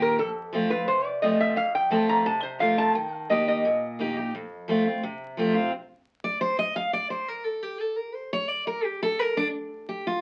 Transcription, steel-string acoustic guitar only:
Already playing: A#2 D#3 A#3 D#4 G4
0.18 F2
0.53 F3 A3 C4 F4
0.71 C4 F4
0.88 C3
1.22 F3 A3 C4 F4
1.56 F2
1.90 F3 A3 C4 F4
2.26 C3
2.59 F3 A3 C4 F4
2.95 D#3
3.29 D#3 A#3 D#4 G4
3.65 A#2
3.99 D#3 A#3 D#4 G4
4.17 D#4 G4
4.35 F2
4.68 F3 A3 C4 F4
4.85 C4 F4
5.03 C3
5.37 F3 A3 C4 F4
5.54 C4 F4
6.24 D5
6.41 C5
6.59 D#5
6.76 F5
6.93 D5
7.10 C5
7.28 A#4
7.45 A4
7.62 G4
7.81 A4
7.97 A#4
8.15 C5
8.33 C#5
8.49 D5
8.67 A#4
8.84 G4
9.03 A4
9.19 A#4
9.37 D4
9.89 G4
10.07 F4

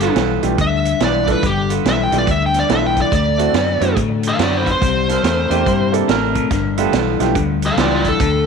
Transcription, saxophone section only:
0.00 B3 F4 A4
1.00 B3 F4 B4
1.69 B3 F4 A4
2.69 B3 F4 A4
3.38 C4 E4 F#4
4.38 C4 E4 F#4
5.08 D4 E4 A#4
6.08 D4 E4 A#4
6.77 B3 F4 A4
7.77 B3 F4 G4

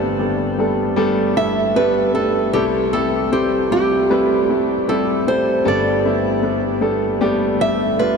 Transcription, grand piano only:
Already playing: G1 G2 G3 A3 B3 D4 A4
0.19 G3 A3 B3 D4 A4
0.58 G3 A3 B3 D4 A4
0.96 G3 A3 B3 D4 A4
1.36 G3 A3 B3 D4 E4
1.76 G3 A3 B3 D4 A4
2.14 G3 A3 B3 D4 A4
2.53 C2 C3 G3 A3 C4 E4 A4
2.94 G3 A3 C4 E4 A4
3.31 G3 A3 C4 E4 C5
3.71 G3 A3 C4 E4 G4
4.10 G3 A3 C4 E4 B4
4.50 G3 A3 C4 E4 A4
4.88 G3 A3 C4 E4 G4
5.27 G3 A3 C4 E4 A4
5.65 G1 G2 G3 A3 B3 D4 A4
6.04 G3 A3 B3 D4 E4
6.43 G3 A3 B3 D4 B4
6.81 G3 A3 B3 D4 A4
7.21 G3 A3 B3 D4 G4
7.61 G3 A3 B3 D4 G4
7.99 G3 A3 B3 D4 F4

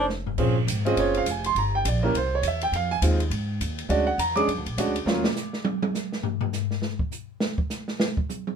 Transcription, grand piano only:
0.38 C4 C#4 F4 G#4
0.85 C4 C#4 F4 G#4 D#5
1.00 C#5
1.17 F5
1.30 G#5
1.46 C6
1.58 A#5
1.75 G5
1.88 D5
2.03 A#3 C#4 E4 G4 A#4
2.17 C5
2.35 C#5
2.48 E5
2.63 G5
2.76 F5
2.91 G#5
3.02 G#3 C4 D#4 F4
3.89 G#3 C#4 D4 F#4 D5
4.07 F#5
4.19 A#5
4.36 G#3 C#4 D4 G#4 D6
4.78 G#3 C#4 D4 F#4
5.06 F#3 A#3 C#4 F4

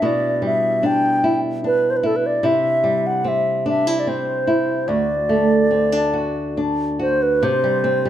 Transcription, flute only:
0.05 D5
0.46 E5
0.86 G5
1.67 B4
1.90 C5
1.97 B4
2.06 A4
2.16 B4
2.26 D5
2.46 E5
3.07 F#5
3.28 E5
3.69 E5
4.00 D5
4.08 C5
4.88 D5
7.01 C5
7.22 B4
7.44 C5

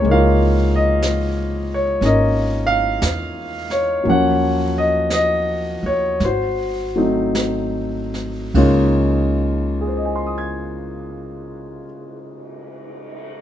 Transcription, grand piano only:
Already playing: C3 F4 A#4 C5 C#5 D#5
0.02 G#3 A#3
0.10 D#4 F4 A#4 F5
0.76 D#5
1.74 C#5
2.01 A#3 C#4 D#4 A#4 D#5
2.67 F5
3.71 C#5
4.03 F#3 A#3 C#4
4.08 F3 C#5 F#5
4.78 D#5
5.13 D#5
5.86 C#5
6.25 F#4 C5
6.96 F#3 A3 C4 D#4
8.55 C#3 G#3 A#3 D#4 F4 C#5
9.81 G#4
9.88 C5
9.97 D#5
10.05 G#5
10.16 C6
10.26 D#6
10.38 G#6

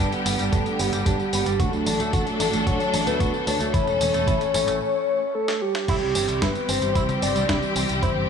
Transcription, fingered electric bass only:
0.26 G1
0.39 G1
0.53 G1
0.79 G1
0.93 G1
1.06 G1
1.33 G1
1.46 G1
1.60 D2
1.73 D2
1.86 A1
2.00 D2
2.13 A1
2.40 A1
2.53 A1
2.67 D2
2.94 A1
3.07 D2
3.20 D2
3.47 D2
3.60 D2
3.74 A1
3.87 E1
4.01 E1
4.14 E1
4.27 A1
4.54 A1
4.68 A1
5.88 C2
6.02 C2
6.15 G1
6.28 C2
6.42 G1
6.69 G1
6.82 G1
6.95 C2
7.22 G1
7.36 C2
7.49 C2
7.76 C2
7.89 C2
8.03 G1
8.16 G1

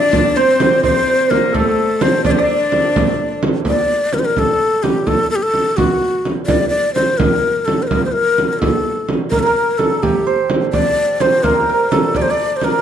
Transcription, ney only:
Already playing: D5
0.36 C5
0.84 C5
1.30 A#4
1.55 A4
2.02 C5
2.25 D5
2.31 C5
2.39 D5
3.68 D5
4.13 A#4
4.19 C5
4.25 A#4
4.39 A4
4.83 G4
5.07 A4
5.30 A4
5.35 G4
5.42 A4
5.77 F#4
6.46 D5
6.69 D5
6.94 C5
7.18 A#4
7.65 A4
7.82 C5
7.87 A#4
8.05 C5
8.12 A#4
8.53 A#4
8.59 A4
9.30 A#4
9.39 A4 A#4
9.78 A4
10.03 G4
10.73 D5
11.21 C5
11.43 A#4
11.92 A4
12.16 D5
12.22 C5
12.31 D5
12.56 C5
12.64 A#4

